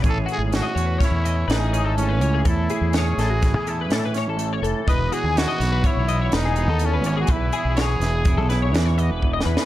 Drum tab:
HH |x--x--x--x--x--x--x--x--x--x--|x--x--x--x--x--x--x--x--x--x--|x--x--x--x--x--x--x--x--x--x--|x--x--x--x--x--x--x--x--------|
SD |------o-----o-----o-----------|------o--o--o-----o--o--------|------o--o--------o-----------|------o--o-----o--o-------o-o-|
BD |o-----------o-----------------|o-----------o-----------------|o-----------o-----------------|o-----------o-----------o-----|